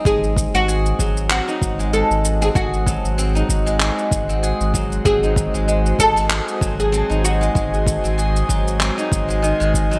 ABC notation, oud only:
X:1
M:4/4
L:1/16
Q:"Swing 16ths" 1/4=96
K:none
V:1 name="Oud"
^G3 ^F4- F F4 A3 G | ^F4 z12 | ^G6 A4- A G3 ^F2- | ^F6 z8 z2 |]